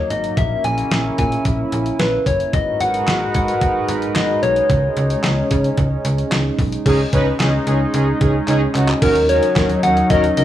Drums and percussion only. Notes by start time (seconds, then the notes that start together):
0.10 closed hi-hat
0.24 closed hi-hat
0.37 kick, closed hi-hat
0.64 closed hi-hat
0.78 closed hi-hat
0.91 snare, closed hi-hat
1.18 kick, closed hi-hat
1.32 closed hi-hat
1.45 kick, closed hi-hat
1.72 closed hi-hat
1.86 closed hi-hat
1.99 snare, closed hi-hat
2.26 kick, closed hi-hat
2.40 closed hi-hat
2.53 kick, closed hi-hat
2.80 closed hi-hat
2.94 closed hi-hat
3.08 snare, clap, closed hi-hat
3.34 kick, closed hi-hat
3.48 closed hi-hat
3.61 kick, closed hi-hat
3.88 closed hi-hat
4.02 closed hi-hat
4.16 snare, clap, closed hi-hat
4.43 closed hi-hat
4.56 closed hi-hat
4.70 kick, closed hi-hat
4.97 closed hi-hat
5.10 closed hi-hat
5.24 snare, clap, closed hi-hat
5.51 kick, closed hi-hat
5.64 closed hi-hat
5.77 kick, closed hi-hat
6.05 closed hi-hat
6.18 closed hi-hat
6.32 snare, clap, closed hi-hat
6.59 kick, open hi-hat
6.72 closed hi-hat
6.86 kick, closed hi-hat, crash
7.13 kick, closed hi-hat
7.40 snare, clap, closed hi-hat
7.67 closed hi-hat
7.94 closed hi-hat
8.21 kick, closed hi-hat
8.48 clap, closed hi-hat
8.75 clap, closed hi-hat
8.89 clap
9.02 kick, closed hi-hat, crash
9.15 closed hi-hat
9.29 closed hi-hat
9.43 closed hi-hat
9.56 kick, snare, clap, closed hi-hat
9.70 closed hi-hat
9.83 closed hi-hat
9.97 closed hi-hat
10.10 kick, closed hi-hat
10.24 closed hi-hat
10.37 closed hi-hat